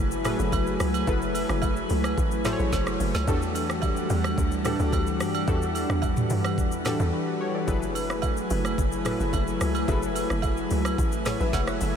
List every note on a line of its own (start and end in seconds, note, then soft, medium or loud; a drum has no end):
0.00 0.34 F#1 loud
0.00 0.24 F#3 medium
0.00 3.24 F#3 medium
0.00 5.44 A3 medium
0.00 0.25 E4 medium
0.00 3.24 E4 medium
0.00 0.25 G#4 medium
0.00 0.26 A4 medium
0.00 0.26 B4 loud
0.00 3.24 B4 medium
0.00 3.24 G#5 medium
0.11 shaker medium
0.24 0.91 F#3 medium
0.24 0.91 E4 medium
0.24 0.92 G#4 medium
0.24 0.92 A4 medium
0.24 0.92 B4 medium
0.24 cross-stick loud
0.24 mid tom medium
0.24 open hi-hat medium
0.24 high agogo medium
0.24 shaker medium
0.39 0.51 F#1 medium
0.39 shaker medium
0.52 0.77 F#1 loud
0.52 kick medium
0.52 high agogo medium
0.52 shaker medium
0.67 shaker medium
0.80 1.04 C#2 medium
0.80 cross-stick loud
0.80 open hi-hat soft
0.80 shaker medium
0.94 high agogo medium
0.94 shaker medium
1.07 1.44 F#1 loud
1.07 1.96 F#3 medium
1.07 1.96 E4 medium
1.07 1.96 G#4 medium
1.07 1.96 A4 medium
1.07 1.96 B4 loud
1.07 kick loud
1.07 shaker medium
1.22 shaker medium
1.35 open hi-hat medium
1.35 high agogo medium
1.35 shaker loud
1.49 1.85 F#1 loud
1.49 cross-stick loud
1.49 shaker soft
1.62 kick loud
1.62 high agogo medium
1.62 low woodblock medium
1.62 shaker medium
1.76 shaker medium
1.90 2.14 C#2 medium
1.90 open hi-hat soft
1.90 shaker medium
2.04 cross-stick loud
2.04 high agogo medium
2.04 shaker medium
2.18 2.55 A1 loud
2.18 kick loud
2.18 shaker medium
2.31 shaker medium
2.45 3.11 F#3 medium
2.45 3.11 E4 medium
2.45 3.12 G#4 medium
2.45 3.12 A4 medium
2.45 2.52 C5 medium
2.45 cross-stick loud
2.45 snare medium
2.45 mid tom medium
2.45 open hi-hat medium
2.45 high agogo medium
2.45 shaker medium
2.53 3.15 C#5 loud
2.59 2.71 A1 medium
2.59 shaker medium
2.72 2.97 F#1 medium
2.72 kick medium
2.72 snare medium
2.72 high agogo medium
2.72 shaker medium
2.87 cross-stick loud
2.87 shaker medium
3.00 3.13 F#1 medium
3.00 open hi-hat soft
3.00 shaker medium
3.14 3.26 C#2 medium
3.14 snare medium
3.14 high agogo medium
3.14 shaker medium
3.27 4.06 E2 loud
3.27 4.16 E3 medium
3.27 7.64 E3 medium
3.27 7.64 G3 medium
3.27 4.16 D4 medium
3.27 7.64 D4 medium
3.27 4.16 F#4 medium
3.27 4.16 G4 medium
3.27 4.16 A4 loud
3.27 7.64 F#5 medium
3.27 kick loud
3.27 shaker medium
3.42 shaker medium
3.55 open hi-hat medium
3.55 high agogo medium
3.55 shaker loud
3.70 cross-stick loud
3.70 shaker soft
3.82 kick loud
3.82 high agogo medium
3.82 low woodblock medium
3.82 shaker medium
3.96 shaker medium
4.10 4.34 E2 loud
4.10 open hi-hat medium
4.10 shaker medium
4.24 cross-stick medium
4.24 high agogo medium
4.24 shaker medium
4.38 4.75 D2 loud
4.38 kick loud
4.38 shaker medium
4.52 shaker medium
4.65 5.31 E3 medium
4.65 5.32 D4 medium
4.65 5.32 F#4 medium
4.65 5.32 G4 medium
4.65 5.32 A4 medium
4.65 cross-stick loud
4.65 mid tom medium
4.65 open hi-hat medium
4.65 high agogo medium
4.65 shaker medium
4.79 4.91 D2 medium
4.79 shaker medium
4.93 5.22 D2 loud
4.93 kick medium
4.93 high agogo medium
4.93 shaker medium
5.07 shaker medium
5.20 5.44 G2 loud
5.20 cross-stick loud
5.20 open hi-hat soft
5.20 shaker medium
5.35 high agogo medium
5.35 shaker medium
5.47 5.85 E2 loud
5.47 6.36 E3 medium
5.47 6.36 D4 medium
5.47 6.36 F#4 medium
5.47 6.36 G4 medium
5.47 6.36 A4 loud
5.47 11.96 B4 medium
5.47 kick loud
5.47 shaker medium
5.62 shaker medium
5.75 open hi-hat medium
5.75 high agogo medium
5.75 shaker loud
5.89 6.26 E2 loud
5.89 cross-stick medium
5.89 shaker soft
6.02 kick loud
6.02 high agogo medium
6.02 low woodblock medium
6.02 shaker medium
6.17 mid tom loud
6.17 shaker medium
6.30 6.59 G2 medium
6.30 open hi-hat soft
6.30 shaker medium
6.44 cross-stick loud
6.44 high agogo medium
6.44 shaker medium
6.58 6.95 E2 loud
6.58 kick loud
6.58 shaker medium
6.72 shaker medium
6.85 7.52 E3 medium
6.85 7.52 D4 medium
6.85 7.13 F#4 medium
6.85 7.13 G4 medium
6.85 7.13 A4 medium
6.85 cross-stick medium
6.85 snare medium
6.85 mid tom medium
6.85 open hi-hat medium
6.85 high agogo medium
6.85 shaker medium
7.00 7.11 E2 medium
7.00 shaker medium
7.13 7.39 F#4 medium
7.13 7.39 B4 medium
7.41 7.54 G4 medium
7.41 7.54 C#5 medium
7.55 7.67 A4 medium
7.55 7.81 D5 medium
7.67 8.46 F#1 loud
7.67 8.56 F#3 medium
7.67 11.96 F#3 medium
7.67 11.96 A3 medium
7.67 8.56 E4 medium
7.67 11.96 E4 medium
7.67 8.56 G#4 medium
7.67 8.56 A4 medium
7.67 8.57 B4 loud
7.67 11.96 G#5 medium
7.67 kick loud
7.67 shaker medium
7.82 shaker medium
7.95 open hi-hat medium
7.95 high agogo medium
7.95 shaker loud
8.10 cross-stick loud
8.10 shaker soft
8.22 kick medium
8.22 high agogo medium
8.22 low woodblock medium
8.22 shaker medium
8.37 shaker medium
8.50 8.75 F#1 loud
8.50 open hi-hat soft
8.50 shaker medium
8.65 cross-stick medium
8.65 high agogo medium
8.65 shaker medium
8.78 9.15 F#1 loud
8.78 kick loud
8.78 shaker medium
8.92 shaker medium
9.05 9.72 F#3 medium
9.05 9.72 E4 medium
9.05 9.72 G#4 medium
9.05 9.72 A4 medium
9.05 9.72 B4 medium
9.05 cross-stick loud
9.05 mid tom medium
9.05 open hi-hat medium
9.05 high agogo medium
9.05 shaker medium
9.20 9.32 F#1 medium
9.20 shaker medium
9.33 9.57 F#1 loud
9.33 kick medium
9.33 high agogo medium
9.33 shaker medium
9.47 shaker medium
9.61 9.85 C#2 medium
9.61 cross-stick loud
9.61 open hi-hat medium
9.61 shaker medium
9.75 high agogo medium
9.75 shaker medium
9.87 10.25 F#1 loud
9.87 10.76 F#3 medium
9.87 10.76 E4 medium
9.87 10.76 G#4 medium
9.87 10.77 A4 medium
9.87 10.77 B4 medium
9.87 kick loud
9.87 shaker medium
10.03 shaker medium
10.15 open hi-hat medium
10.15 high agogo medium
10.15 shaker loud
10.30 10.66 F#1 loud
10.30 cross-stick loud
10.30 shaker soft
10.42 kick loud
10.42 high agogo medium
10.42 low woodblock medium
10.42 shaker medium
10.57 shaker medium
10.71 10.95 C#2 medium
10.71 open hi-hat soft
10.71 shaker medium
10.85 cross-stick loud
10.85 high agogo medium
10.85 shaker medium
10.98 11.35 A1 loud
10.98 kick loud
10.98 shaker medium
11.12 shaker medium
11.25 11.40 G#4 medium
11.25 11.39 C#5 medium
11.25 cross-stick loud
11.25 snare medium
11.25 mid tom medium
11.25 open hi-hat medium
11.25 high agogo medium
11.25 shaker medium
11.40 11.52 A1 medium
11.40 11.53 B4 medium
11.40 11.53 E5 medium
11.40 shaker medium
11.53 11.78 F#1 medium
11.53 11.67 C#5 medium
11.53 11.67 F#5 medium
11.53 kick medium
11.53 snare medium
11.53 high agogo medium
11.53 shaker medium
11.67 11.81 C#5 medium
11.67 11.80 F#5 medium
11.67 cross-stick loud
11.67 shaker soft
11.81 11.94 F#1 medium
11.81 11.95 B4 medium
11.81 11.94 E5 medium
11.81 open hi-hat medium
11.81 shaker medium